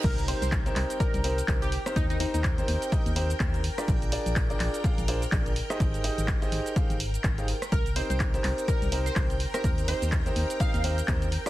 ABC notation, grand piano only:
X:1
M:4/4
L:1/16
Q:"Swing 16ths" 1/4=125
K:Cm
V:1 name="Grand piano"
[EGBce]2 [CEGBc]3 [CEGBc]3 [CEGBd] z [CEGBc] z [CEGBc] z2 [CEGBc]- | [CEGBc]2 [CEGBc]3 [CEGBc]3 [CEGBe] z [CEGBc] z [CEGBc] z2 [DFABd]- | [DFABd]2 [DFABd]3 [DFABd]3 [DFABf] z [DFABc] z [DFABd] z2 [EGAce]- | [EGAce]2 [EGAce]3 [EGAce]3 [EGAcf] z4 [EGAcf] z2 |
z2 [CEGBc]3 [CEGBc]3 d z [CEGBc] z [CEGBc] z2 [CEGBc]- | [CEGBc]2 [CEGBc]3 [CEGBc]3 [CEGe] z [CEGBc] z [CEGBc] z2 [DFABd] |]